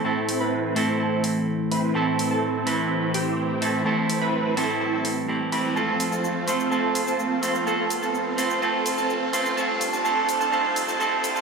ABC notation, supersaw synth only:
X:1
M:4/4
L:1/16
Q:1/4=126
K:Am
V:1 name="Supersaw synth"
[CEA]3 [CEB]3 [CEA]2 [CEA]2 z4 [CEB]2 | [CEA]3 [CEA]3 [CEB]4 [CEG]4 [CEA]2 | [CEA]3 [CEB]3 [CEA]2 [CEA]2 z4 [CEB]2 | [CFA]3 [CFA]3 [CFc]2 [CFA]3 [CFA]3 [CFc]2 |
[CFA]3 [CFA]3 [CFc]2 [CFA]3 [CFA]3 [CFc]2 | [CFA]3 [CFA] [CFA]3 [CFA] [CFA]3 [CFA] [CFA]3 [CFA] |]